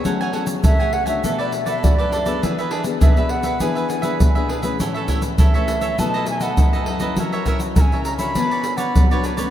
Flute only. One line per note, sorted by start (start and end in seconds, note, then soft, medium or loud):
0.65 0.95 E5 loud
0.94 1.07 F#5 loud
1.08 1.36 E5 medium
1.40 1.46 D5 medium
1.67 1.85 E5 medium
1.84 2.28 D5 medium
3.02 3.32 E5 medium
3.30 3.63 F#5 medium
3.61 4.50 G#5 medium
5.40 6.01 E5 medium
5.99 6.29 A5 loud
6.30 6.44 G#5 medium
6.42 6.87 F#5 medium
7.77 7.82 A#5 medium
7.81 8.04 G#5 medium
8.05 8.17 A#5 medium
8.18 8.79 B5 loud
8.77 9.23 F#5 medium